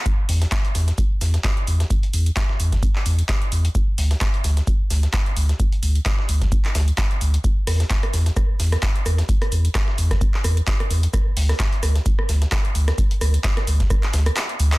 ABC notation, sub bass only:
X:1
M:4/4
L:1/8
Q:"Swing 16ths" 1/4=130
K:Ddor
V:1 name="Sub bass" clef=bass
z E,, z E,, z E,, z E,, | z E,, z E,, z E,, z E,, | z D,, z D,, z D,, z D,, | z D,, z D,, z D,, z D,, |
z E,, z E,, z E,, z E,, | z E,, z E,, z E,, z E,, | z D,, z D,, z D,, z D,, | z D,, z D,, z D,, z D,, |]